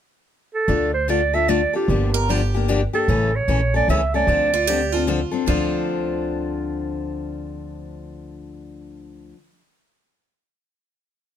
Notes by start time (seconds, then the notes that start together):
0.54 A4
0.68 D2 D3 A3 D4 F4 A4
0.94 C5
1.08 D3 A3 D4 F4 A4 D5
1.33 D4 F4 A4 E5
1.48 D3 A3 D4 F4 A4 D5
1.73 D4 F4 G4 A4
1.88 G1 D3 F3 A#3 D4 G4
2.14 A#4
2.29 D3 F3 A#3 D4 G4
2.54 A#3 D4 G4
2.68 D3 F3 A#3 D4 G4
2.93 A#3 D4 G4 A4
3.08 A1 C#3 E3 A3 C#4 A4
3.35 C#5
3.48 A#1 C#3 E3 A3 C#4 A4
3.74 A3 C#4 A4 D5
3.88 C#2 C#3 E3 A3 C#4 A4 E5
4.14 A3 C#4 A4 D5
4.27 D2 D3 F3 C4 D4 A4
4.54 F4
4.67 D3 F3 C4 D4 G4 A4
4.92 C4 D4 F4 A4
5.07 D3 F3 C4 D4 A4
5.31 C4 D4 A4
5.46 D2 D3 F3 C4 D4 F4 A4